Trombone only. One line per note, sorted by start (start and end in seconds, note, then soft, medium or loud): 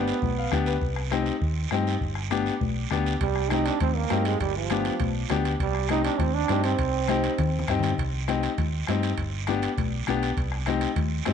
0.00 0.64 B3 medium
3.21 3.52 G3 medium
3.50 3.68 D#4 medium
3.67 3.81 D4 medium
3.82 3.97 C4 medium
3.96 4.27 A#3 medium
4.26 4.40 G#3 medium
4.41 4.55 G3 medium
4.57 5.12 F3 medium
5.62 5.89 G3 medium
5.91 6.04 D#4 medium
6.05 6.21 D4 medium
6.20 6.36 C4 medium
6.34 6.63 D4 loud
6.64 7.64 C4 medium